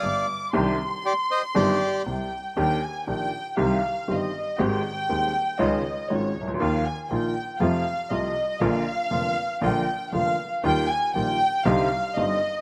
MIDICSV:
0, 0, Header, 1, 5, 480
1, 0, Start_track
1, 0, Key_signature, -3, "major"
1, 0, Tempo, 505051
1, 509, Time_signature, 4, 2, 24, 8
1, 11985, End_track
2, 0, Start_track
2, 0, Title_t, "Violin section"
2, 0, Program_c, 0, 48
2, 23, Note_on_c, 0, 86, 80
2, 507, Note_off_c, 0, 86, 0
2, 510, Note_on_c, 0, 84, 93
2, 1915, Note_off_c, 0, 84, 0
2, 1951, Note_on_c, 0, 79, 69
2, 2434, Note_off_c, 0, 79, 0
2, 2449, Note_on_c, 0, 79, 75
2, 2666, Note_off_c, 0, 79, 0
2, 2689, Note_on_c, 0, 80, 75
2, 2923, Note_off_c, 0, 80, 0
2, 2932, Note_on_c, 0, 79, 77
2, 3372, Note_off_c, 0, 79, 0
2, 3417, Note_on_c, 0, 77, 75
2, 3888, Note_off_c, 0, 77, 0
2, 3905, Note_on_c, 0, 75, 68
2, 4372, Note_off_c, 0, 75, 0
2, 4374, Note_on_c, 0, 79, 87
2, 5325, Note_off_c, 0, 79, 0
2, 5329, Note_on_c, 0, 75, 68
2, 5802, Note_off_c, 0, 75, 0
2, 5802, Note_on_c, 0, 73, 77
2, 6158, Note_off_c, 0, 73, 0
2, 6275, Note_on_c, 0, 77, 78
2, 6497, Note_off_c, 0, 77, 0
2, 6517, Note_on_c, 0, 80, 79
2, 6673, Note_off_c, 0, 80, 0
2, 6684, Note_on_c, 0, 80, 47
2, 6751, Note_off_c, 0, 80, 0
2, 6758, Note_on_c, 0, 79, 76
2, 7151, Note_off_c, 0, 79, 0
2, 7163, Note_on_c, 0, 79, 60
2, 7230, Note_off_c, 0, 79, 0
2, 7233, Note_on_c, 0, 77, 81
2, 7711, Note_off_c, 0, 77, 0
2, 7712, Note_on_c, 0, 75, 76
2, 8190, Note_off_c, 0, 75, 0
2, 8194, Note_on_c, 0, 77, 97
2, 9151, Note_off_c, 0, 77, 0
2, 9154, Note_on_c, 0, 79, 75
2, 9599, Note_off_c, 0, 79, 0
2, 9639, Note_on_c, 0, 77, 85
2, 9996, Note_off_c, 0, 77, 0
2, 10123, Note_on_c, 0, 79, 89
2, 10341, Note_off_c, 0, 79, 0
2, 10368, Note_on_c, 0, 80, 82
2, 10600, Note_on_c, 0, 79, 86
2, 10601, Note_off_c, 0, 80, 0
2, 11044, Note_off_c, 0, 79, 0
2, 11076, Note_on_c, 0, 77, 85
2, 11555, Note_off_c, 0, 77, 0
2, 11557, Note_on_c, 0, 75, 87
2, 11985, Note_off_c, 0, 75, 0
2, 11985, End_track
3, 0, Start_track
3, 0, Title_t, "Bandoneon"
3, 0, Program_c, 1, 23
3, 0, Note_on_c, 1, 74, 54
3, 0, Note_on_c, 1, 77, 66
3, 247, Note_off_c, 1, 77, 0
3, 251, Note_off_c, 1, 74, 0
3, 1001, Note_on_c, 1, 67, 61
3, 1007, Note_on_c, 1, 74, 77
3, 1071, Note_off_c, 1, 67, 0
3, 1075, Note_off_c, 1, 74, 0
3, 1245, Note_on_c, 1, 72, 71
3, 1248, Note_on_c, 1, 75, 80
3, 1350, Note_off_c, 1, 72, 0
3, 1352, Note_off_c, 1, 75, 0
3, 1477, Note_on_c, 1, 74, 76
3, 1479, Note_on_c, 1, 67, 65
3, 1923, Note_off_c, 1, 74, 0
3, 1924, Note_off_c, 1, 67, 0
3, 11985, End_track
4, 0, Start_track
4, 0, Title_t, "Upright piano"
4, 0, Program_c, 2, 0
4, 29, Note_on_c, 2, 31, 44
4, 32, Note_on_c, 2, 43, 48
4, 231, Note_off_c, 2, 31, 0
4, 232, Note_off_c, 2, 43, 0
4, 505, Note_on_c, 2, 51, 68
4, 506, Note_on_c, 2, 62, 61
4, 507, Note_on_c, 2, 60, 57
4, 509, Note_on_c, 2, 36, 81
4, 509, Note_on_c, 2, 48, 80
4, 510, Note_on_c, 2, 67, 66
4, 709, Note_off_c, 2, 51, 0
4, 710, Note_off_c, 2, 60, 0
4, 710, Note_off_c, 2, 62, 0
4, 711, Note_off_c, 2, 48, 0
4, 712, Note_off_c, 2, 36, 0
4, 712, Note_off_c, 2, 67, 0
4, 1469, Note_on_c, 2, 51, 66
4, 1472, Note_on_c, 2, 62, 57
4, 1474, Note_on_c, 2, 43, 78
4, 1475, Note_on_c, 2, 31, 73
4, 1475, Note_on_c, 2, 60, 55
4, 1477, Note_on_c, 2, 67, 70
4, 1672, Note_off_c, 2, 51, 0
4, 1674, Note_off_c, 2, 62, 0
4, 1675, Note_off_c, 2, 31, 0
4, 1675, Note_off_c, 2, 43, 0
4, 1675, Note_off_c, 2, 60, 0
4, 1676, Note_off_c, 2, 67, 0
4, 1960, Note_on_c, 2, 36, 43
4, 1961, Note_on_c, 2, 48, 49
4, 2159, Note_off_c, 2, 36, 0
4, 2160, Note_off_c, 2, 48, 0
4, 2438, Note_on_c, 2, 51, 73
4, 2441, Note_on_c, 2, 62, 53
4, 2442, Note_on_c, 2, 39, 69
4, 2442, Note_on_c, 2, 58, 55
4, 2445, Note_on_c, 2, 67, 64
4, 2639, Note_off_c, 2, 51, 0
4, 2640, Note_off_c, 2, 62, 0
4, 2641, Note_off_c, 2, 39, 0
4, 2641, Note_off_c, 2, 58, 0
4, 2642, Note_off_c, 2, 67, 0
4, 2918, Note_on_c, 2, 51, 36
4, 2920, Note_on_c, 2, 58, 39
4, 2921, Note_on_c, 2, 34, 51
4, 2923, Note_on_c, 2, 46, 47
4, 2923, Note_on_c, 2, 62, 38
4, 2924, Note_on_c, 2, 67, 43
4, 3120, Note_off_c, 2, 51, 0
4, 3121, Note_off_c, 2, 34, 0
4, 3121, Note_off_c, 2, 58, 0
4, 3122, Note_off_c, 2, 46, 0
4, 3122, Note_off_c, 2, 62, 0
4, 3123, Note_off_c, 2, 67, 0
4, 3390, Note_on_c, 2, 51, 59
4, 3392, Note_on_c, 2, 48, 73
4, 3393, Note_on_c, 2, 36, 74
4, 3394, Note_on_c, 2, 55, 53
4, 3395, Note_on_c, 2, 67, 64
4, 3396, Note_on_c, 2, 60, 57
4, 3596, Note_off_c, 2, 51, 0
4, 3597, Note_off_c, 2, 48, 0
4, 3598, Note_off_c, 2, 36, 0
4, 3598, Note_off_c, 2, 55, 0
4, 3599, Note_off_c, 2, 60, 0
4, 3599, Note_off_c, 2, 67, 0
4, 3876, Note_on_c, 2, 51, 38
4, 3878, Note_on_c, 2, 43, 47
4, 3878, Note_on_c, 2, 55, 34
4, 3880, Note_on_c, 2, 31, 45
4, 3881, Note_on_c, 2, 60, 37
4, 3882, Note_on_c, 2, 67, 42
4, 4079, Note_off_c, 2, 51, 0
4, 4080, Note_off_c, 2, 43, 0
4, 4080, Note_off_c, 2, 55, 0
4, 4081, Note_off_c, 2, 31, 0
4, 4081, Note_off_c, 2, 60, 0
4, 4082, Note_off_c, 2, 67, 0
4, 4354, Note_on_c, 2, 51, 63
4, 4357, Note_on_c, 2, 56, 58
4, 4360, Note_on_c, 2, 32, 71
4, 4361, Note_on_c, 2, 44, 71
4, 4361, Note_on_c, 2, 60, 55
4, 4364, Note_on_c, 2, 67, 70
4, 4558, Note_off_c, 2, 51, 0
4, 4559, Note_off_c, 2, 56, 0
4, 4561, Note_off_c, 2, 32, 0
4, 4561, Note_off_c, 2, 44, 0
4, 4561, Note_off_c, 2, 60, 0
4, 4563, Note_off_c, 2, 67, 0
4, 4840, Note_on_c, 2, 27, 49
4, 4841, Note_on_c, 2, 51, 41
4, 4842, Note_on_c, 2, 39, 48
4, 4842, Note_on_c, 2, 60, 40
4, 4844, Note_on_c, 2, 56, 37
4, 4846, Note_on_c, 2, 67, 46
4, 5040, Note_off_c, 2, 27, 0
4, 5041, Note_off_c, 2, 39, 0
4, 5041, Note_off_c, 2, 51, 0
4, 5041, Note_off_c, 2, 60, 0
4, 5042, Note_off_c, 2, 56, 0
4, 5043, Note_off_c, 2, 67, 0
4, 5311, Note_on_c, 2, 51, 58
4, 5313, Note_on_c, 2, 37, 74
4, 5313, Note_on_c, 2, 56, 63
4, 5313, Note_on_c, 2, 61, 56
4, 5314, Note_on_c, 2, 49, 71
4, 5317, Note_on_c, 2, 65, 72
4, 5515, Note_off_c, 2, 51, 0
4, 5516, Note_off_c, 2, 37, 0
4, 5516, Note_off_c, 2, 56, 0
4, 5516, Note_off_c, 2, 61, 0
4, 5517, Note_off_c, 2, 49, 0
4, 5518, Note_off_c, 2, 65, 0
4, 5796, Note_on_c, 2, 56, 38
4, 5797, Note_on_c, 2, 32, 47
4, 5798, Note_on_c, 2, 44, 48
4, 5798, Note_on_c, 2, 51, 42
4, 5800, Note_on_c, 2, 61, 36
4, 5804, Note_on_c, 2, 65, 44
4, 5997, Note_off_c, 2, 56, 0
4, 5998, Note_off_c, 2, 32, 0
4, 5998, Note_off_c, 2, 44, 0
4, 5998, Note_off_c, 2, 51, 0
4, 5999, Note_off_c, 2, 61, 0
4, 6001, Note_off_c, 2, 65, 0
4, 6092, Note_on_c, 2, 36, 43
4, 6153, Note_off_c, 2, 36, 0
4, 6153, Note_on_c, 2, 37, 57
4, 6213, Note_off_c, 2, 37, 0
4, 6215, Note_on_c, 2, 38, 68
4, 6274, Note_off_c, 2, 38, 0
4, 6274, Note_on_c, 2, 51, 73
4, 6275, Note_on_c, 2, 39, 78
4, 6275, Note_on_c, 2, 53, 54
4, 6279, Note_on_c, 2, 58, 55
4, 6280, Note_on_c, 2, 65, 68
4, 6475, Note_off_c, 2, 39, 0
4, 6475, Note_off_c, 2, 51, 0
4, 6475, Note_off_c, 2, 53, 0
4, 6477, Note_off_c, 2, 58, 0
4, 6478, Note_off_c, 2, 65, 0
4, 6752, Note_on_c, 2, 46, 47
4, 6752, Note_on_c, 2, 51, 41
4, 6754, Note_on_c, 2, 53, 39
4, 6755, Note_on_c, 2, 58, 40
4, 6756, Note_on_c, 2, 34, 47
4, 6760, Note_on_c, 2, 65, 47
4, 6953, Note_off_c, 2, 46, 0
4, 6953, Note_off_c, 2, 51, 0
4, 6954, Note_off_c, 2, 53, 0
4, 6954, Note_off_c, 2, 58, 0
4, 6955, Note_off_c, 2, 34, 0
4, 6957, Note_off_c, 2, 65, 0
4, 7224, Note_on_c, 2, 48, 63
4, 7225, Note_on_c, 2, 53, 77
4, 7227, Note_on_c, 2, 41, 72
4, 7230, Note_on_c, 2, 57, 59
4, 7230, Note_on_c, 2, 65, 73
4, 7429, Note_off_c, 2, 48, 0
4, 7430, Note_off_c, 2, 41, 0
4, 7432, Note_off_c, 2, 53, 0
4, 7432, Note_off_c, 2, 57, 0
4, 7432, Note_off_c, 2, 65, 0
4, 7700, Note_on_c, 2, 48, 48
4, 7702, Note_on_c, 2, 53, 39
4, 7705, Note_on_c, 2, 36, 47
4, 7705, Note_on_c, 2, 57, 34
4, 7708, Note_on_c, 2, 65, 47
4, 7907, Note_off_c, 2, 48, 0
4, 7907, Note_off_c, 2, 53, 0
4, 7908, Note_off_c, 2, 36, 0
4, 7909, Note_off_c, 2, 57, 0
4, 7910, Note_off_c, 2, 65, 0
4, 8185, Note_on_c, 2, 34, 82
4, 8185, Note_on_c, 2, 50, 66
4, 8187, Note_on_c, 2, 46, 76
4, 8187, Note_on_c, 2, 53, 58
4, 8188, Note_on_c, 2, 58, 61
4, 8189, Note_on_c, 2, 65, 64
4, 8388, Note_off_c, 2, 50, 0
4, 8389, Note_off_c, 2, 34, 0
4, 8389, Note_off_c, 2, 46, 0
4, 8389, Note_off_c, 2, 53, 0
4, 8390, Note_off_c, 2, 58, 0
4, 8390, Note_off_c, 2, 65, 0
4, 8656, Note_on_c, 2, 29, 48
4, 8657, Note_on_c, 2, 50, 43
4, 8657, Note_on_c, 2, 53, 38
4, 8658, Note_on_c, 2, 58, 39
4, 8659, Note_on_c, 2, 41, 48
4, 8662, Note_on_c, 2, 65, 47
4, 8864, Note_off_c, 2, 29, 0
4, 8865, Note_off_c, 2, 41, 0
4, 8865, Note_off_c, 2, 50, 0
4, 8865, Note_off_c, 2, 53, 0
4, 8865, Note_off_c, 2, 58, 0
4, 8867, Note_off_c, 2, 65, 0
4, 9137, Note_on_c, 2, 50, 65
4, 9141, Note_on_c, 2, 34, 74
4, 9141, Note_on_c, 2, 46, 68
4, 9141, Note_on_c, 2, 53, 62
4, 9141, Note_on_c, 2, 58, 59
4, 9147, Note_on_c, 2, 65, 73
4, 9345, Note_off_c, 2, 50, 0
4, 9347, Note_off_c, 2, 34, 0
4, 9347, Note_off_c, 2, 46, 0
4, 9347, Note_off_c, 2, 53, 0
4, 9347, Note_off_c, 2, 58, 0
4, 9349, Note_off_c, 2, 65, 0
4, 9623, Note_on_c, 2, 50, 42
4, 9624, Note_on_c, 2, 41, 49
4, 9625, Note_on_c, 2, 29, 46
4, 9625, Note_on_c, 2, 53, 33
4, 9625, Note_on_c, 2, 58, 33
4, 9627, Note_on_c, 2, 65, 41
4, 9829, Note_off_c, 2, 50, 0
4, 9830, Note_off_c, 2, 29, 0
4, 9830, Note_off_c, 2, 41, 0
4, 9830, Note_off_c, 2, 53, 0
4, 9830, Note_off_c, 2, 58, 0
4, 9831, Note_off_c, 2, 65, 0
4, 10109, Note_on_c, 2, 39, 74
4, 10110, Note_on_c, 2, 51, 76
4, 10111, Note_on_c, 2, 55, 59
4, 10114, Note_on_c, 2, 58, 56
4, 10115, Note_on_c, 2, 65, 73
4, 10313, Note_off_c, 2, 39, 0
4, 10313, Note_off_c, 2, 51, 0
4, 10313, Note_off_c, 2, 55, 0
4, 10315, Note_off_c, 2, 58, 0
4, 10316, Note_off_c, 2, 65, 0
4, 10596, Note_on_c, 2, 55, 41
4, 10597, Note_on_c, 2, 51, 44
4, 10599, Note_on_c, 2, 34, 49
4, 10599, Note_on_c, 2, 46, 52
4, 10600, Note_on_c, 2, 58, 42
4, 10602, Note_on_c, 2, 65, 48
4, 10797, Note_off_c, 2, 51, 0
4, 10797, Note_off_c, 2, 55, 0
4, 10798, Note_off_c, 2, 34, 0
4, 10798, Note_off_c, 2, 46, 0
4, 10799, Note_off_c, 2, 58, 0
4, 10800, Note_off_c, 2, 65, 0
4, 11075, Note_on_c, 2, 48, 74
4, 11075, Note_on_c, 2, 50, 65
4, 11077, Note_on_c, 2, 36, 75
4, 11078, Note_on_c, 2, 55, 62
4, 11078, Note_on_c, 2, 60, 64
4, 11082, Note_on_c, 2, 63, 72
4, 11276, Note_off_c, 2, 48, 0
4, 11276, Note_off_c, 2, 50, 0
4, 11277, Note_off_c, 2, 36, 0
4, 11278, Note_off_c, 2, 55, 0
4, 11278, Note_off_c, 2, 60, 0
4, 11279, Note_off_c, 2, 63, 0
4, 11565, Note_on_c, 2, 50, 39
4, 11567, Note_on_c, 2, 43, 48
4, 11567, Note_on_c, 2, 55, 38
4, 11567, Note_on_c, 2, 60, 38
4, 11567, Note_on_c, 2, 63, 45
4, 11568, Note_on_c, 2, 31, 50
4, 11761, Note_off_c, 2, 50, 0
4, 11762, Note_off_c, 2, 31, 0
4, 11762, Note_off_c, 2, 43, 0
4, 11762, Note_off_c, 2, 55, 0
4, 11762, Note_off_c, 2, 60, 0
4, 11762, Note_off_c, 2, 63, 0
4, 11985, End_track
5, 0, Start_track
5, 0, Title_t, "Double bass"
5, 0, Program_c, 3, 43
5, 31, Note_on_c, 3, 31, 49
5, 232, Note_off_c, 3, 31, 0
5, 514, Note_on_c, 3, 36, 82
5, 714, Note_off_c, 3, 36, 0
5, 1479, Note_on_c, 3, 31, 78
5, 1677, Note_off_c, 3, 31, 0
5, 1955, Note_on_c, 3, 36, 51
5, 2157, Note_off_c, 3, 36, 0
5, 2436, Note_on_c, 3, 39, 66
5, 2638, Note_off_c, 3, 39, 0
5, 2920, Note_on_c, 3, 34, 53
5, 3121, Note_off_c, 3, 34, 0
5, 3406, Note_on_c, 3, 36, 77
5, 3604, Note_off_c, 3, 36, 0
5, 3884, Note_on_c, 3, 31, 49
5, 4083, Note_off_c, 3, 31, 0
5, 4365, Note_on_c, 3, 32, 76
5, 4564, Note_off_c, 3, 32, 0
5, 4840, Note_on_c, 3, 39, 49
5, 5041, Note_off_c, 3, 39, 0
5, 5319, Note_on_c, 3, 37, 74
5, 5520, Note_off_c, 3, 37, 0
5, 5795, Note_on_c, 3, 32, 49
5, 5997, Note_off_c, 3, 32, 0
5, 6041, Note_on_c, 3, 37, 55
5, 6269, Note_off_c, 3, 37, 0
5, 6275, Note_on_c, 3, 39, 78
5, 6475, Note_off_c, 3, 39, 0
5, 6748, Note_on_c, 3, 34, 54
5, 6951, Note_off_c, 3, 34, 0
5, 7225, Note_on_c, 3, 41, 87
5, 7429, Note_off_c, 3, 41, 0
5, 7706, Note_on_c, 3, 36, 48
5, 7909, Note_off_c, 3, 36, 0
5, 8180, Note_on_c, 3, 34, 76
5, 8386, Note_off_c, 3, 34, 0
5, 8666, Note_on_c, 3, 29, 51
5, 8869, Note_off_c, 3, 29, 0
5, 9146, Note_on_c, 3, 34, 76
5, 9349, Note_off_c, 3, 34, 0
5, 9628, Note_on_c, 3, 29, 49
5, 9832, Note_off_c, 3, 29, 0
5, 10112, Note_on_c, 3, 39, 73
5, 10314, Note_off_c, 3, 39, 0
5, 10595, Note_on_c, 3, 34, 55
5, 10796, Note_off_c, 3, 34, 0
5, 11070, Note_on_c, 3, 36, 79
5, 11274, Note_off_c, 3, 36, 0
5, 11560, Note_on_c, 3, 31, 52
5, 11758, Note_off_c, 3, 31, 0
5, 11985, End_track
0, 0, End_of_file